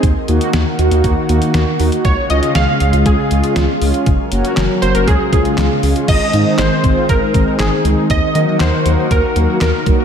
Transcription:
<<
  \new Staff \with { instrumentName = "Analog polysynth" } { \time 4/4 \key aes \mixolydian \tempo 4 = 119 r1 | des''8 ees''8 f''4 aes'4. r8 | r4. c''16 bes'16 aes'8 aes'4 r8 | ees''4 c''4 bes'4 aes'8. r16 |
ees''4 c''4 bes'4 bes'8. r16 | }
  \new Staff \with { instrumentName = "Analog polysynth" } { \time 4/4 \key aes \mixolydian r8 <bes ees' ges'>8 r8 <bes ees' ges'>16 <bes ees' ges'>8 r16 <bes ees' ges'>16 <bes ees' ges'>8 r16 <bes ees' ges'>16 <bes ees' ges'>16 | r8 <aes des' f'>8 r8 <aes des' aes'>16 <aes des' f'>8 r16 <aes des' f'>16 <aes des' f'>8 r16 <aes des' f'>16 <aes des' f'>16 | r8 <bes des' ges'>8 r8 <bes des' ges'>16 <bes des' ges'>16 r8 <aes des' f'>16 <aes des' f'>8 r16 <aes des' aes'>16 <aes des' f'>16 | r8 <aes c' ees'>8 r8 <aes c' f'>8 r8 <aes c' ees'>8 r8 <aes c' ees'>8 |
r8 <ges bes ees'>8 r8 <ges bes ees'>8 r8 <ges bes ges'>8 r8 <ges bes ges'>8 | }
  \new Staff \with { instrumentName = "Analog synth pad" } { \time 4/4 \key aes \mixolydian << { <bes ges'>1 | <aes f'>1 | <des' bes'>2 <aes f'>2 | <aes c'>1 |
<bes ges'>1 | } \\ { ees1 | des1 | ges2 des2 | ees1~ |
ees1 | } >> }
  \new Staff \with { instrumentName = "Analog synth bass" } { \clef bass \time 4/4 \key aes \mixolydian ees,16 r16 ees,16 r16 ees,16 r16 ees,16 ees,16 ees,16 r16 ees,16 r16 ees,16 r16 ees,16 r16 | des,16 r16 des,16 r16 des,16 r16 des,16 des,16 des,16 r16 des,16 r16 des,16 r16 des,16 r16 | ges,,16 r16 ges,,16 r16 ges,,16 r16 ges,,16 ges,,16 des,16 r16 des,16 r16 des,16 r16 des,16 r16 | aes,,16 r16 aes,16 r16 aes,,16 r16 aes,,16 r16 aes,,16 r16 aes,,16 r16 aes,,16 r16 des,16 r16 |
ees,16 r16 ees16 r16 ees,16 r16 ees,16 r16 ees,16 r16 ees,16 r16 ees,16 r16 c,16 r16 | }
  \new DrumStaff \with { instrumentName = "Drums" } \drummode { \time 4/4 <hh bd>8 hh16 hh16 <hh sn>8 hh16 hh16 <hh bd>8 hh16 hh16 <hh sn>8 hho16 hh16 | <hh bd>8 hh16 hh16 <hh sn>8 hh16 hh16 <hh bd>8 hh16 hh16 <hh sn>8 hho16 hh16 | <hh bd>8 hh16 hh16 <hc hh sn>8 hh16 hh16 <hh bd>8 <hh bd>16 hh16 <hc hh sn>8 hho16 hh16 | <cymc hh bd>8 hh8 <hc hh sn>8 <hh bd>8 <hh bd>8 <hh bd>8 <hc hh sn>8 hh8 |
<hh bd>8 hh8 <hc hh sn>8 hh8 <hh bd>8 hh8 <hc hh sn>8 <hh bd>8 | }
>>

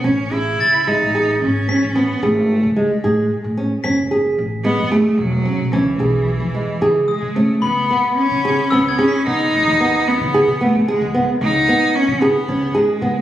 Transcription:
<<
  \new Staff \with { instrumentName = "Glockenspiel" } { \time 7/8 \key cis \minor \tempo 4 = 111 r4 a'''2 b'''8~ | b'''2 r4. | b'''2~ b'''8 r4 | r2 r8 dis'''4 |
b''2 e'''16 gis'''16 b'''4~ | b'''4 r2 r8 | r2. r8 | }
  \new Staff \with { instrumentName = "Nylon-string guitar" } { \time 7/8 \key cis \minor cis'8 gis'4 gis8 gis'4 cis'8 | cis'8 gis'4 gis8 gis'4 cis'8 | cis'8 gis'4 gis8 gis'4 cis'8 | cis'8 gis'4 gis8 gis'4 cis'8 |
r8 b4 gis'8 cis'8 gis'8 b8 | r8 b4 gis'8 b8 gis'8 b8 | r8 b4 gis'8 cis'8 gis'8 b8 | }
  \new Staff \with { instrumentName = "Cello" } { \time 7/8 \key cis \minor cis'8 e'4 dis'4 cis'4 | b8 a4 gis4. r8 | r4. b8 a8 fis4 | e2~ e8 gis8 a8 |
b4 cis'4 b8 cis'8 dis'8~ | dis'4 b4 a8 gis8. r16 | dis'4 cis'8 b4 gis4 | }
  \new Staff \with { instrumentName = "Upright bass" } { \clef bass \time 7/8 \key cis \minor a,,4 cis,8. a,,8. gis,,8 r16 a,,16~ | a,,16 r16 gis,,8. cis,8 r16 a,8 r16 a,8 r16 | fis,,4 a,,8. fis,,8. e,,8 r16 b,,16 | cis,8 b,,8. e,8 r16 cis8 r16 cis8 r16 |
cis,8 r8. cis8 r16 cis,8 r8 cis16 r16 | cis,16 dis,4 cis8 cis16 r16 cis16 r16 cis,8 r16 | cis,8 r8. cis8 r16 cis,8 r8 cis16 r16 | }
>>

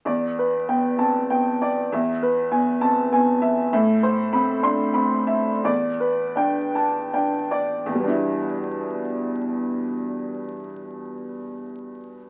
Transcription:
<<
  \new Staff \with { instrumentName = "Upright piano" } { \time 3/4 \key e \minor \tempo 4 = 84 << { r4. a''8 r4 | r4. a''8 r4 | r4. c'''8 r4 | r4. a''8 r4 |
<e, b, g b d' e'>2.~ | <e, b, g b d' e'>2. | } \\ { d''8 b'8 g''4 g''8 d''8 | e''8 b'8 gis''4 gis''8 e''8 | e''8 c''8 b''4 b''8 e''8 | d''8 b'8 g''4 g''8 d''8 |
r2. | r2. | } >> }
  \new Staff \with { instrumentName = "Upright piano" } { \time 3/4 \key e \minor e,4 b8 c'8 b4 | e,4 b8 c'8 b4 | a,4 c'8 d'8 c'4 | e,4 d'4 d'4 |
r2. | r2. | }
>>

